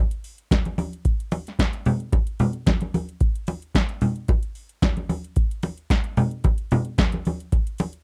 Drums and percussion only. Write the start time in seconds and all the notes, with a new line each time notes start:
0.11 closed hi-hat
0.24 open hi-hat
0.38 closed hi-hat
0.51 kick, snare, closed hi-hat, high conga
0.65 closed hi-hat, high conga
0.78 open hi-hat, high conga
0.93 closed hi-hat
1.05 kick, closed hi-hat
1.20 closed hi-hat
1.32 open hi-hat, muted conga
1.47 snare, closed hi-hat
1.59 kick, snare, closed hi-hat, high conga
1.73 closed hi-hat
1.86 open hi-hat, low conga
2.00 closed hi-hat
2.12 kick, closed hi-hat, muted conga
2.27 closed hi-hat
2.39 open hi-hat, low conga
2.53 closed hi-hat
2.66 kick, snare, closed hi-hat, high conga
2.81 closed hi-hat, high conga
2.94 open hi-hat, high conga
3.09 closed hi-hat
3.21 kick, closed hi-hat
3.35 closed hi-hat
3.47 open hi-hat, muted conga
3.62 closed hi-hat
3.75 kick, snare, closed hi-hat, high conga
3.89 closed hi-hat
4.01 open hi-hat, low conga
4.16 closed hi-hat
4.28 kick, closed hi-hat, muted conga
4.43 closed hi-hat
4.55 open hi-hat
4.69 closed hi-hat
4.82 kick, snare, closed hi-hat, high conga
4.97 closed hi-hat, high conga
5.09 open hi-hat, high conga
5.24 closed hi-hat
5.36 kick, closed hi-hat
5.51 closed hi-hat
5.63 open hi-hat, muted conga
5.78 closed hi-hat
5.90 kick, snare, closed hi-hat, high conga
6.04 closed hi-hat
6.17 open hi-hat, low conga
6.31 closed hi-hat
6.44 kick, closed hi-hat, muted conga
6.58 closed hi-hat
6.71 open hi-hat, low conga
6.85 closed hi-hat
6.98 kick, snare, closed hi-hat, high conga
7.12 closed hi-hat, high conga
7.25 open hi-hat, high conga
7.40 closed hi-hat
7.52 kick, closed hi-hat, muted conga
7.67 closed hi-hat
7.78 open hi-hat, muted conga
7.93 closed hi-hat